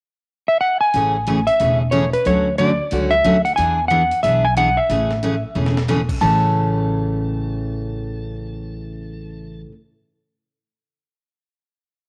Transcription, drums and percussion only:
0, 0, Header, 1, 2, 480
1, 0, Start_track
1, 0, Key_signature, 3, "major"
1, 0, Tempo, 329308
1, 1369, Time_signature, 4, 2, 24, 8
1, 17612, End_track
2, 0, Start_track
2, 0, Title_t, "Drums"
2, 1367, Note_on_c, 9, 46, 42
2, 1513, Note_off_c, 9, 46, 0
2, 1847, Note_on_c, 9, 42, 48
2, 1992, Note_off_c, 9, 42, 0
2, 2147, Note_on_c, 9, 46, 40
2, 2293, Note_off_c, 9, 46, 0
2, 2328, Note_on_c, 9, 46, 47
2, 2474, Note_off_c, 9, 46, 0
2, 2798, Note_on_c, 9, 42, 54
2, 2944, Note_off_c, 9, 42, 0
2, 3111, Note_on_c, 9, 46, 38
2, 3257, Note_off_c, 9, 46, 0
2, 3283, Note_on_c, 9, 46, 40
2, 3429, Note_off_c, 9, 46, 0
2, 3763, Note_on_c, 9, 42, 46
2, 3909, Note_off_c, 9, 42, 0
2, 4241, Note_on_c, 9, 46, 43
2, 4387, Note_off_c, 9, 46, 0
2, 4730, Note_on_c, 9, 42, 55
2, 4875, Note_off_c, 9, 42, 0
2, 5036, Note_on_c, 9, 46, 37
2, 5182, Note_off_c, 9, 46, 0
2, 5212, Note_on_c, 9, 46, 43
2, 5357, Note_off_c, 9, 46, 0
2, 5691, Note_on_c, 9, 42, 48
2, 5837, Note_off_c, 9, 42, 0
2, 5997, Note_on_c, 9, 46, 41
2, 6143, Note_off_c, 9, 46, 0
2, 6179, Note_on_c, 9, 46, 45
2, 6325, Note_off_c, 9, 46, 0
2, 6657, Note_on_c, 9, 42, 56
2, 6802, Note_off_c, 9, 42, 0
2, 7138, Note_on_c, 9, 46, 39
2, 7284, Note_off_c, 9, 46, 0
2, 7443, Note_on_c, 9, 38, 45
2, 7589, Note_off_c, 9, 38, 0
2, 7621, Note_on_c, 9, 42, 53
2, 7767, Note_off_c, 9, 42, 0
2, 8255, Note_on_c, 9, 38, 57
2, 8401, Note_off_c, 9, 38, 0
2, 8415, Note_on_c, 9, 38, 80
2, 8561, Note_off_c, 9, 38, 0
2, 8584, Note_on_c, 9, 38, 60
2, 8729, Note_off_c, 9, 38, 0
2, 8875, Note_on_c, 9, 36, 70
2, 8880, Note_on_c, 9, 49, 69
2, 9021, Note_off_c, 9, 36, 0
2, 9026, Note_off_c, 9, 49, 0
2, 17612, End_track
0, 0, End_of_file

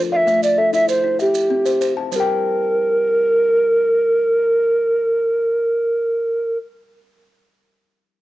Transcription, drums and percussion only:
0, 0, Header, 1, 2, 480
1, 0, Start_track
1, 0, Tempo, 308325
1, 428, Time_signature, 12, 3, 24, 8
1, 12786, End_track
2, 0, Start_track
2, 0, Title_t, "Drums"
2, 429, Note_on_c, 9, 70, 50
2, 584, Note_off_c, 9, 70, 0
2, 671, Note_on_c, 9, 70, 65
2, 827, Note_off_c, 9, 70, 0
2, 1143, Note_on_c, 9, 70, 50
2, 1299, Note_off_c, 9, 70, 0
2, 1380, Note_on_c, 9, 70, 75
2, 1536, Note_off_c, 9, 70, 0
2, 1859, Note_on_c, 9, 70, 57
2, 2015, Note_off_c, 9, 70, 0
2, 2095, Note_on_c, 9, 70, 74
2, 2251, Note_off_c, 9, 70, 0
2, 2579, Note_on_c, 9, 70, 59
2, 2735, Note_off_c, 9, 70, 0
2, 2824, Note_on_c, 9, 70, 74
2, 2980, Note_off_c, 9, 70, 0
2, 3306, Note_on_c, 9, 70, 79
2, 3461, Note_off_c, 9, 70, 0
2, 12786, End_track
0, 0, End_of_file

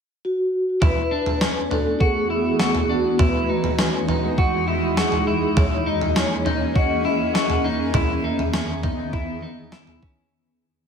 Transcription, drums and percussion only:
0, 0, Header, 1, 2, 480
1, 0, Start_track
1, 0, Tempo, 594059
1, 660, Time_signature, 4, 2, 24, 8
1, 8786, End_track
2, 0, Start_track
2, 0, Title_t, "Drums"
2, 660, Note_on_c, 9, 43, 94
2, 661, Note_on_c, 9, 36, 95
2, 741, Note_off_c, 9, 36, 0
2, 741, Note_off_c, 9, 43, 0
2, 1021, Note_on_c, 9, 43, 53
2, 1102, Note_off_c, 9, 43, 0
2, 1140, Note_on_c, 9, 38, 104
2, 1221, Note_off_c, 9, 38, 0
2, 1384, Note_on_c, 9, 43, 56
2, 1464, Note_off_c, 9, 43, 0
2, 1620, Note_on_c, 9, 36, 74
2, 1701, Note_off_c, 9, 36, 0
2, 2097, Note_on_c, 9, 38, 95
2, 2178, Note_off_c, 9, 38, 0
2, 2219, Note_on_c, 9, 43, 52
2, 2300, Note_off_c, 9, 43, 0
2, 2579, Note_on_c, 9, 36, 87
2, 2580, Note_on_c, 9, 43, 94
2, 2660, Note_off_c, 9, 36, 0
2, 2661, Note_off_c, 9, 43, 0
2, 2940, Note_on_c, 9, 43, 56
2, 3021, Note_off_c, 9, 43, 0
2, 3059, Note_on_c, 9, 38, 108
2, 3140, Note_off_c, 9, 38, 0
2, 3300, Note_on_c, 9, 43, 56
2, 3381, Note_off_c, 9, 43, 0
2, 3539, Note_on_c, 9, 36, 75
2, 3620, Note_off_c, 9, 36, 0
2, 4018, Note_on_c, 9, 38, 101
2, 4099, Note_off_c, 9, 38, 0
2, 4138, Note_on_c, 9, 43, 49
2, 4218, Note_off_c, 9, 43, 0
2, 4499, Note_on_c, 9, 43, 97
2, 4500, Note_on_c, 9, 36, 92
2, 4579, Note_off_c, 9, 43, 0
2, 4580, Note_off_c, 9, 36, 0
2, 4860, Note_on_c, 9, 43, 53
2, 4941, Note_off_c, 9, 43, 0
2, 4978, Note_on_c, 9, 38, 111
2, 5058, Note_off_c, 9, 38, 0
2, 5219, Note_on_c, 9, 43, 57
2, 5300, Note_off_c, 9, 43, 0
2, 5458, Note_on_c, 9, 36, 75
2, 5539, Note_off_c, 9, 36, 0
2, 5938, Note_on_c, 9, 38, 96
2, 6019, Note_off_c, 9, 38, 0
2, 6057, Note_on_c, 9, 43, 51
2, 6138, Note_off_c, 9, 43, 0
2, 6414, Note_on_c, 9, 43, 96
2, 6418, Note_on_c, 9, 36, 89
2, 6495, Note_off_c, 9, 43, 0
2, 6499, Note_off_c, 9, 36, 0
2, 6780, Note_on_c, 9, 43, 55
2, 6861, Note_off_c, 9, 43, 0
2, 6897, Note_on_c, 9, 38, 110
2, 6977, Note_off_c, 9, 38, 0
2, 7138, Note_on_c, 9, 43, 58
2, 7141, Note_on_c, 9, 36, 71
2, 7219, Note_off_c, 9, 43, 0
2, 7222, Note_off_c, 9, 36, 0
2, 7378, Note_on_c, 9, 36, 71
2, 7459, Note_off_c, 9, 36, 0
2, 7854, Note_on_c, 9, 38, 98
2, 7935, Note_off_c, 9, 38, 0
2, 7978, Note_on_c, 9, 43, 54
2, 8059, Note_off_c, 9, 43, 0
2, 8101, Note_on_c, 9, 36, 83
2, 8182, Note_off_c, 9, 36, 0
2, 8786, End_track
0, 0, End_of_file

